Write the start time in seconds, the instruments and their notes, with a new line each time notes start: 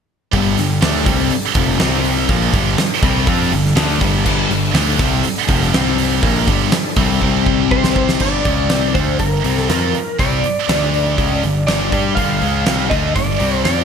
0.32 picked electric bass G1, overdriven electric guitar G2 D3 G3, tonewheel organ G3 D4 A4, kick, open hi-hat
0.57 picked electric bass G1, overdriven electric guitar G2 D3, snare, open hi-hat
0.82 picked electric bass D2, overdriven electric guitar D3 A3 D4, snare, open hi-hat
1.06 picked electric bass C2, overdriven electric guitar C3 G3 C4, kick, open hi-hat
1.30 muted distorted electric guitar stroke, muted picked electric bass stroke, muted overdriven electric guitar stroke, open hi-hat
1.54 picked electric bass F1, overdriven electric guitar F2 C3 F3, kick, open hi-hat
1.80 picked electric bass C2, overdriven electric guitar C3 G3 C4, tonewheel organ C4 G4 D5, snare, open hi-hat
2.04 open hi-hat
2.29 picked electric bass A#1, overdriven electric guitar A#2 F3 A#3, tonewheel organ G3 D4 A4, kick, open hi-hat
2.53 picked electric bass G1, overdriven electric guitar G2 D3 G3, kick, open hi-hat
2.78 muted distorted electric guitar stroke, muted picked electric bass stroke, muted overdriven electric guitar stroke, snare, open hi-hat
3.03 picked electric bass C2, overdriven electric guitar C3 G3 C4, kick, open hi-hat
3.27 picked electric bass F2, overdriven electric guitar F3 C4 F4, kick, open hi-hat
3.52 picked electric bass G1, overdriven electric guitar G2 D3, open hi-hat
3.66 snare
3.76 picked electric bass D2, overdriven electric guitar D3 A3 D4, snare, open hi-hat
4.01 picked electric bass G1, overdriven electric guitar G2 D3 G3, kick, open hi-hat
4.26 picked electric bass G1, overdriven electric guitar G2 D3 G3, kick, crash
4.50 picked electric bass G1, overdriven electric guitar G2 D3, open hi-hat
4.74 picked electric bass D2, overdriven electric guitar D3 A3 D4, snare, open hi-hat
4.99 picked electric bass C2, overdriven electric guitar C3 G3 C4, kick, open hi-hat
5.24 muted distorted electric guitar stroke, muted overdriven electric guitar stroke, muted picked electric bass stroke, open hi-hat
5.47 picked electric bass F1, overdriven electric guitar F2 C3 F3, kick, open hi-hat
5.62 snare
5.73 picked electric bass C2, overdriven electric guitar C3 G3 C4, tonewheel organ C4 G4 D5, snare, open hi-hat
5.98 open hi-hat
6.21 picked electric bass A#1, overdriven electric guitar A#2 F3 A#3, tonewheel organ G3 D4 A4, kick, open hi-hat
6.47 picked electric bass G1, overdriven electric guitar G2 D3 G3, kick, open hi-hat
6.72 muted distorted electric guitar stroke, muted overdriven electric guitar stroke, muted picked electric bass stroke, snare, open hi-hat
6.96 picked electric bass C2, overdriven electric guitar C3 G3 C4, kick, open hi-hat
7.21 picked electric bass C2, overdriven electric guitar C3 G3 C4, tonewheel organ C4 G4 D5, kick
7.46 kick
7.71 lead electric guitar C5, kick
7.84 snare
7.96 kick
8.09 snare
8.20 picked electric bass G1, overdriven electric guitar G2 D3 G3, lead electric guitar D5, kick, crash
8.45 picked electric bass C#2, overdriven electric guitar C#3 G#3 C#4, kick, open hi-hat
8.70 picked electric bass C2, overdriven electric guitar C3 G3 C4, snare, open hi-hat
8.94 picked electric bass D2, overdriven electric guitar D3 A3 D4, lead electric guitar C5, kick, open hi-hat
9.19 picked electric bass G1, overdriven electric guitar G2 D3, lead electric guitar A#4, kick, open hi-hat
9.44 picked electric bass C2, overdriven electric guitar C3 G3 C4, open hi-hat
9.57 lead electric guitar A4, snare
9.68 picked electric bass F2, overdriven electric guitar F3 C4 F4, lead electric guitar A#4, snare, open hi-hat
9.94 muted picked electric bass stroke, muted distorted electric guitar stroke, muted overdriven electric guitar stroke, open hi-hat
10.19 picked electric bass C2, overdriven electric guitar C3 G3 C4, lead electric guitar D5, kick, open hi-hat
10.44 muted distorted electric guitar stroke, muted picked electric bass stroke, muted overdriven electric guitar stroke, open hi-hat
10.69 picked electric bass D2, overdriven electric guitar D3 A3 D4, snare, open hi-hat
10.94 open hi-hat
11.18 picked electric bass C#2, overdriven electric guitar C#3 G#3 C#4, kick, open hi-hat
11.43 picked electric bass G1, overdriven electric guitar G2 D3, open hi-hat
11.67 picked electric bass G1, overdriven electric guitar G2 D3 G3, lead electric guitar D5, snare, open hi-hat
11.92 picked electric bass G2, overdriven electric guitar G3 D4 G4, kick, open hi-hat
12.15 picked electric bass G1, overdriven electric guitar G2 D3 G3, lead electric guitar F5, kick, open hi-hat
12.40 picked electric bass C#2, overdriven electric guitar C#3 G#3 C#4, open hi-hat
12.66 picked electric bass C2, overdriven electric guitar C3 G3 C4, snare, open hi-hat
12.90 picked electric bass D2, overdriven electric guitar D3 A3 D4, lead electric guitar D#5, kick, open hi-hat
13.15 picked electric bass G1, overdriven electric guitar G2 D3, lead electric guitar D5, kick, open hi-hat
13.39 picked electric bass C2, overdriven electric guitar C3 G3 C4, open hi-hat
13.64 picked electric bass F2, overdriven electric guitar F3 C4 F4, lead electric guitar D5, snare, open hi-hat